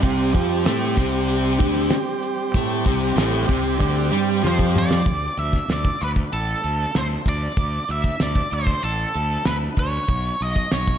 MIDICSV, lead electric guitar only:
0, 0, Header, 1, 2, 480
1, 0, Start_track
1, 0, Tempo, 627615
1, 34, Time_signature, 4, 2, 24, 8
1, 8399, End_track
2, 0, Start_track
2, 0, Title_t, "Lead electric guitar"
2, 0, Program_c, 0, 29
2, 3418, Note_on_c, 0, 72, 78
2, 3479, Note_off_c, 0, 72, 0
2, 3660, Note_on_c, 0, 74, 92
2, 4118, Note_off_c, 0, 74, 0
2, 4121, Note_on_c, 0, 76, 70
2, 4362, Note_off_c, 0, 76, 0
2, 4376, Note_on_c, 0, 74, 80
2, 4596, Note_on_c, 0, 71, 74
2, 4609, Note_off_c, 0, 74, 0
2, 4659, Note_off_c, 0, 71, 0
2, 4840, Note_on_c, 0, 69, 78
2, 5329, Note_off_c, 0, 69, 0
2, 5335, Note_on_c, 0, 72, 80
2, 5397, Note_off_c, 0, 72, 0
2, 5574, Note_on_c, 0, 74, 77
2, 6049, Note_off_c, 0, 74, 0
2, 6052, Note_on_c, 0, 76, 71
2, 6288, Note_off_c, 0, 76, 0
2, 6291, Note_on_c, 0, 74, 85
2, 6527, Note_on_c, 0, 72, 85
2, 6528, Note_off_c, 0, 74, 0
2, 6758, Note_off_c, 0, 72, 0
2, 6761, Note_on_c, 0, 69, 76
2, 7237, Note_off_c, 0, 69, 0
2, 7240, Note_on_c, 0, 71, 77
2, 7304, Note_off_c, 0, 71, 0
2, 7487, Note_on_c, 0, 73, 88
2, 7969, Note_on_c, 0, 75, 76
2, 7975, Note_off_c, 0, 73, 0
2, 8197, Note_on_c, 0, 73, 76
2, 8208, Note_off_c, 0, 75, 0
2, 8399, Note_off_c, 0, 73, 0
2, 8399, End_track
0, 0, End_of_file